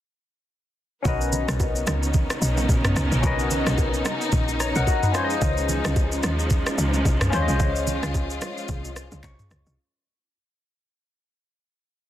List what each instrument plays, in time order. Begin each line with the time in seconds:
1.02 log drum bass B1, string section C#3 B3 C#4 D#4, tine electric piano C#4 F#4 A#4, kick, low conga, shaker
1.07 tine electric piano B4 D#5
1.21 shaker
1.33 low conga, shaker
1.48 log drum bass B1, cross-stick, low bongo, shaker
1.60 kick, high bongo, shaker
1.76 shaker
1.87 log drum bass C#2, cross-stick, low bongo, shaker
2.03 shaker
2.14 kick, low conga, shaker
2.30 cross-stick, high bongo, shaker
2.42 log drum bass B1, shaker
2.57 low bongo, shaker
2.69 log drum bass A#1, kick, high bongo, shaker
2.85 cross-stick, mid tom, shaker
2.96 log drum bass C#2, cross-stick, shaker
3.12 log drum bass A#1, shaker
3.21 log drum bass B1, tine electric piano C#4 F#4 A#4, kick, low conga, shaker
3.25 tine electric piano B4 D#5
3.39 shaker
3.51 low conga, shaker
3.67 log drum bass B1, cross-stick, low bongo, shaker
3.78 kick, high bongo, shaker
3.94 shaker
4.05 cross-stick, low bongo, shaker
4.21 shaker
4.32 log drum bass A#1, kick, low conga, shaker
4.48 high bongo, shaker
4.60 tine electric piano C#5 A#5, cross-stick, shaker
4.75 log drum bass B1, tine electric piano A#4 F#5, low bongo, shaker
4.87 tine electric piano F#4 D#5, kick, high bongo, shaker
5.03 tine electric piano D#4 B4, mid tom, shaker
5.12 string section F3 G#3 C#4, tine electric piano C#4 F4 G#4, cross-stick, shaker
5.16 tine electric piano C5 C#5
5.24 tine electric piano D#5
5.30 shaker
5.42 log drum bass C#2, kick, low conga, shaker
5.57 shaker
5.69 low conga, shaker
5.85 log drum bass C#2, cross-stick, low bongo, shaker
5.96 kick, high bongo, shaker
6.12 shaker
6.23 log drum bass D#2, cross-stick, low bongo, shaker
6.39 shaker
6.50 kick, low conga, shaker
6.66 cross-stick, high bongo, shaker
6.78 log drum bass C#2, shaker
6.94 low bongo, shaker
7.05 log drum bass C2, kick, high bongo, shaker
7.21 cross-stick, mid tom, shaker
7.30 log drum bass D#2, tine electric piano C#4 F4 G#4, string section F4, cross-stick, shaker
7.34 tine electric piano C5 C#5
7.42 tine electric piano D#5
7.48 log drum bass C2, shaker
7.60 log drum bass C#2, kick, low conga, shaker
7.76 shaker
7.87 low conga, shaker
8.03 log drum bass C#2, cross-stick, low bongo, shaker
8.14 kick, high bongo, shaker
8.30 shaker
8.41 cross-stick, low bongo, shaker
8.57 shaker
8.68 log drum bass C2, kick, low conga, shaker
8.85 high bongo, shaker
8.96 cross-stick, shaker
9.12 log drum bass C#2, low bongo, shaker
9.23 log drum bass C2, tine electric piano C#6, kick, clap, high bongo, shaker
9.39 mid tom, shaker
9.51 log drum bass C#2, cross-stick, shaker
9.66 log drum bass C2, shaker